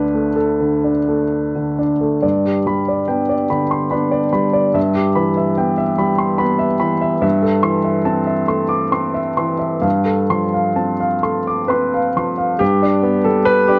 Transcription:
0.00 2.18 D2 soft
0.00 0.60 D3 soft
0.00 0.27 D4 soft
0.00 0.36 B4 medium
0.14 0.90 A3 soft
0.36 1.77 A4 soft
0.60 0.98 D3 soft
0.84 1.22 D4 soft
1.08 1.83 A3 soft
1.55 1.92 D3 soft
1.79 2.15 D4 soft
2.01 2.23 A3 soft
2.22 4.72 G2 soft
2.22 2.57 D5 soft
2.45 2.80 G4 soft
2.66 3.34 G3 soft
2.66 3.01 B5 soft
2.89 3.22 D5 soft
3.08 3.47 B3 soft
3.08 3.47 D4 soft
3.08 3.42 G5 soft
3.29 3.63 D5 soft
3.50 4.17 D3 soft
3.50 3.84 B5 soft
3.71 3.92 C6 soft
3.91 4.30 B3 soft
3.91 4.30 D4 soft
3.91 4.25 B5 soft
4.12 4.46 D5 soft
4.33 4.75 G3 soft
4.33 4.67 B5 soft
4.54 4.75 D5 soft
4.74 7.19 G2 soft
4.74 5.09 E5 soft
4.95 5.29 G4 soft
5.15 5.83 E3 soft
5.15 5.49 B5 soft
5.37 5.71 E5 soft
5.57 5.96 B3 soft
5.57 5.91 G5 soft
5.78 6.12 E5 soft
5.98 6.66 G3 soft
5.98 6.33 B5 soft
6.18 6.40 C6 soft
6.38 6.77 B3 soft
6.38 6.73 B5 medium
6.59 6.93 E5 soft
6.80 7.22 E3 soft
6.80 7.14 B5 soft
7.01 7.20 E5 soft
7.21 9.79 G2 medium
7.21 7.56 E5 medium
7.42 7.77 A4 medium
7.63 8.32 E3 soft
7.63 7.98 C6 medium
7.85 8.19 E5 soft
8.05 8.45 C4 soft
8.05 8.40 A5 soft
8.27 8.62 E5 soft
8.48 9.19 A3 soft
8.48 8.84 C6 soft
8.69 8.92 D6 soft
8.92 9.33 C4 soft
8.92 9.29 C6 soft
9.14 9.51 E5 soft
9.37 9.84 E3 soft
9.37 9.75 C6 soft
9.59 9.83 E5 soft
9.82 12.55 G2 soft
9.82 10.21 F5 soft
10.05 10.44 A4 soft
10.30 11.06 F3 soft
10.30 10.68 C6 soft
10.54 10.92 F5 soft
10.76 11.20 C4 soft
10.76 11.14 A5 soft
11.00 11.38 F5 soft
11.23 11.97 A3 soft
11.23 11.61 C6 soft
11.47 11.70 D6 soft
11.68 12.12 C4 soft
11.68 12.59 B4 medium
11.68 12.07 C6 soft
11.94 12.30 F5 soft
12.16 12.61 F3 soft
12.16 12.52 C6 soft
12.38 12.60 F5 soft
12.59 13.79 G2 medium
12.59 13.25 G4 medium
12.83 13.17 D4 medium
13.03 13.38 B3 medium
13.25 13.79 G3 soft
13.25 13.47 A4 medium
13.46 13.68 B4 medium
13.68 13.79 D4 soft
13.68 13.79 G4 medium

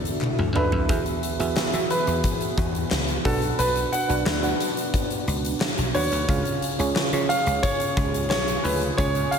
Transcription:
0.00 0.13 E2 medium
0.00 0.87 D3 medium
0.00 0.91 D3 medium
0.00 0.55 D4 medium
0.00 0.87 D4 medium
0.00 0.87 E4 medium
0.00 0.55 F#4 medium
0.00 6.25 F#4 medium
0.00 0.56 A4 medium
0.00 0.62 D5 loud
0.00 0.56 E5 medium
0.05 closed hi-hat medium
0.21 clap medium
0.21 high tom medium
0.39 0.51 D2 medium
0.39 mid tom medium
0.55 0.68 F#2 medium
0.55 0.86 D4 medium
0.55 0.86 F#4 medium
0.55 0.86 A4 medium
0.55 1.89 B4 medium
0.55 0.86 E5 medium
0.55 mid tom medium
0.72 0.85 F2 medium
0.72 floor tom medium
0.89 1.02 E2 loud
0.89 1.86 E3 medium
0.89 3.23 E3 medium
0.89 1.35 B3 medium
0.89 3.23 B3 medium
0.89 1.35 F#4 medium
0.89 1.35 G#4 medium
0.89 3.23 G#4 medium
0.89 1.35 E5 medium
0.89 kick loud
0.89 closed hi-hat medium
1.06 closed hi-hat soft
1.23 closed hi-hat medium
1.39 1.53 E2 medium
1.39 1.70 B3 medium
1.39 1.70 F#4 medium
1.39 1.70 G#4 medium
1.39 1.71 E5 medium
1.39 closed hi-hat soft
1.57 muted slap bass stroke soft
1.57 snare loud
1.57 clap medium
1.73 1.86 E3 medium
1.73 2.95 B3 medium
1.73 2.96 F#4 medium
1.73 2.96 G#4 medium
1.73 2.96 E5 medium
1.73 closed hi-hat medium
1.90 3.29 B4 medium
1.90 closed hi-hat medium
2.07 2.20 E2 medium
2.07 closed hi-hat soft
2.24 kick medium
2.24 closed hi-hat medium
2.41 closed hi-hat medium
2.58 2.83 E2 medium
2.58 kick medium
2.58 closed hi-hat medium
2.75 closed hi-hat medium
2.91 3.17 C#2 medium
2.91 snare loud
2.91 clap medium
3.08 closed hi-hat medium
3.25 3.51 B1 loud
3.25 4.23 B2 medium
3.25 6.26 B3 medium
3.25 4.01 D4 medium
3.25 6.26 D4 medium
3.25 4.02 F#4 medium
3.25 3.60 A4 medium
3.25 4.02 B4 medium
3.25 4.02 F#5 medium
3.25 kick loud
3.25 open hi-hat medium
3.42 closed hi-hat soft
3.59 3.84 B1 loud
3.59 3.90 B4 loud
3.59 closed hi-hat medium
3.76 closed hi-hat soft
3.92 5.23 F#5 medium
3.92 closed hi-hat medium
4.09 4.22 B1 loud
4.09 4.40 D4 medium
4.09 4.40 F#4 medium
4.09 4.40 B4 medium
4.09 4.40 F#5 medium
4.09 closed hi-hat soft
4.26 4.52 D2 medium
4.26 snare loud
4.26 clap medium
4.43 5.65 D4 medium
4.43 5.65 F#4 medium
4.43 5.65 B4 medium
4.43 5.66 F#5 medium
4.43 closed hi-hat medium
4.60 closed hi-hat medium
4.77 closed hi-hat soft
4.94 kick medium
4.94 closed hi-hat medium
5.10 closed hi-hat medium
5.28 5.53 C#2 medium
5.28 closed hi-hat medium
5.45 closed hi-hat medium
5.60 snare loud
5.60 clap medium
5.78 5.91 B1 medium
5.78 closed hi-hat medium
5.94 6.08 D#2 medium
5.94 6.25 D4 medium
5.94 6.25 F#4 medium
5.94 6.26 B4 medium
5.94 7.34 C#5 medium
5.94 6.26 F#5 medium
5.94 open hi-hat medium
6.12 6.25 D2 medium
6.12 closed hi-hat soft
6.28 6.41 C#2 loud
6.28 9.39 C#3 medium
6.28 7.26 C#3 medium
6.28 6.74 C#4 medium
6.28 9.39 C#4 medium
6.28 9.39 F4 medium
6.28 6.74 F4 medium
6.28 9.39 G#4 medium
6.28 6.75 G#4 medium
6.28 6.75 F5 medium
6.28 kick loud
6.28 closed hi-hat medium
6.45 closed hi-hat soft
6.62 closed hi-hat medium
6.79 6.92 C#2 medium
6.79 7.10 C#4 medium
6.79 7.10 F4 medium
6.79 7.10 G#4 medium
6.79 7.10 C#5 medium
6.79 closed hi-hat soft
6.96 snare loud
6.96 clap medium
7.13 7.25 C#3 loud
7.13 8.35 C#4 medium
7.13 8.35 F4 medium
7.13 8.35 G#4 medium
7.13 8.35 C#5 medium
7.13 closed hi-hat medium
7.29 7.64 F5 medium
7.29 closed hi-hat medium
7.46 7.59 C#2 medium
7.46 closed hi-hat soft
7.63 8.28 C#5 loud
7.63 kick medium
7.63 closed hi-hat medium
7.80 closed hi-hat medium
7.97 8.31 C#2 medium
7.97 kick medium
7.97 closed hi-hat medium
8.14 closed hi-hat medium
8.30 8.56 B1 loud
8.30 8.65 C#5 medium
8.30 snare loud
8.30 clap medium
8.48 closed hi-hat medium
8.64 8.90 D2 medium
8.64 8.99 B4 medium
8.64 open hi-hat medium
8.81 closed hi-hat soft
8.97 9.24 C#2 loud
8.97 9.39 C#3 medium
8.97 9.39 C#4 medium
8.97 9.39 F4 medium
8.97 9.39 G#4 medium
8.97 9.33 C#5 loud
8.97 9.39 G#5 medium
8.97 kick loud
8.97 closed hi-hat medium
9.15 closed hi-hat soft
9.31 9.39 F5 medium
9.31 closed hi-hat medium

